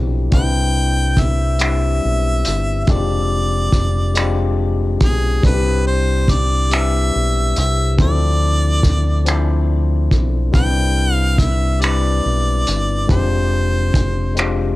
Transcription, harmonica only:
0.34 G5
1.20 E5
1.63 E5
2.84 E5
2.91 D5
5.03 G#4
5.46 B4
5.87 C5
6.30 D5
6.73 E5
7.59 E5
8.02 D5
10.55 G5
11.13 F5
11.40 E5
11.81 D5
13.10 C5

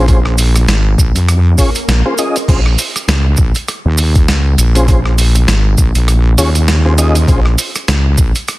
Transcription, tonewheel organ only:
0.08 C#4 F4 G#4 C5
1.58 C#4 F4 G#4 C#5
2.06 C#4 F4 G#4 C5
2.19 C#4 F4 G#4 D#5
2.49 C#4 F4 G#4 C5
4.76 C#4 F4 G#4 C5
4.88 C#4 F4 G#4 C5
6.38 C#4 F4 G#4 C#5
6.85 C#4 F4 G#4 C5
6.98 C#4 F4 G#4 D#5
7.28 C#4 F4 G#4 C5

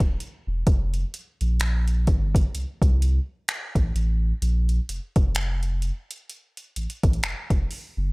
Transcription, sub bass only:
0.00 D#1
0.47 E1
0.67 F1
1.41 A#1
2.08 G1
2.55 C2
2.82 C2
3.75 A1
3.95 A1
4.42 A#1
4.89 F1
5.16 F1
6.76 A1
7.04 A1
7.23 F1
7.50 F1
7.97 F#1

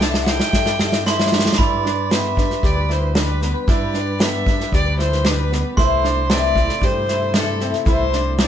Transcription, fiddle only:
0.02 A5
0.22 F#5
0.28 G5
1.07 E5
1.33 E5
1.60 D5
2.11 E5
2.65 D5
2.92 C5
3.16 B4
3.69 D5
4.21 E5
4.75 D5
5.00 C5
5.28 B4
5.80 C5
6.31 D5
6.85 C5
7.36 A4
7.88 C5
8.42 D5

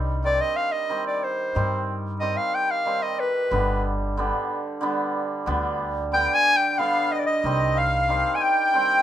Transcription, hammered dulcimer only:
Already playing: D#3 G3
0.24 D#3 G3 C4
0.89 D#3 G3 C4
1.55 D#3 G3 C4
2.20 D#3 G3 C4
2.85 D#3 G3 C4
3.51 D3 G3 B3
4.17 D3 G3 B3
4.81 D3 G3 B3
5.46 D3 G3 B3
6.12 D3 G3 B3
6.78 D3 G3 B3
7.44 D#3 G3 C4
8.09 D#3 G3 C4
8.74 D#3 G3 C4

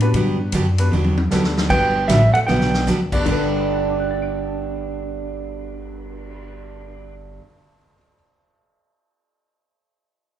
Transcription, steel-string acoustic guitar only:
0.15 D3 F#3 B3 D4 G4
0.54 D3 F#3 B3 D4 G4
0.93 D3 F#3 B3 D4 G4
1.32 D3 F#3 B3 D4 G4
1.69 D3 F#3 B3 D4 G4
2.09 D3 F#3 B3 D4 G4
2.48 D3 F#3 B3 D4 G4
2.87 D3 F#3 B3 D4 G4
3.25 G2 D3 B3 D4 G4

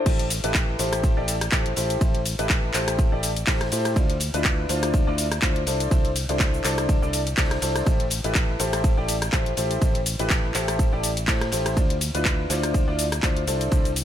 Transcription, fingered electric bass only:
0.06 A1
0.44 A1
0.79 A1
1.17 A1
1.77 A1
2.01 A1
2.39 A1
2.74 A1
3.12 A1
3.47 A1
3.72 A2
3.96 D2
4.34 D2
4.69 D2
5.07 D2
5.43 D2
5.67 C2
5.91 C2
6.29 C2
6.64 C2
7.02 C2
7.38 C2
7.62 C2
7.86 A1
8.24 A1
8.60 A1
8.97 A1
9.57 A1
9.82 A1
10.19 A1
10.55 A1
10.93 A1
11.28 A2
11.52 A1
11.77 D2
12.15 D2
12.50 D2
12.88 D2
13.23 D2
13.47 C2

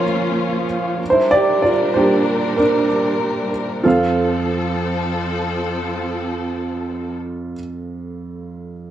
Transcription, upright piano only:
Already playing: F3 A#3 C#4 F4 A#4 C#5 F5
1.10 E4 C5
1.31 G4 D5
1.62 F4 D5
1.94 G3 A#3 D4 G4 C5
2.57 D4 A#4
3.83 F2 F4 A4 C5
3.88 F5

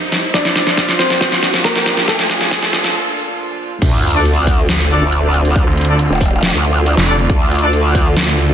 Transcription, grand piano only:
Already playing: A#3 A#4
0.34 D4 D5
0.99 C4 C5
1.64 A#3 A#4
2.08 A3 A4

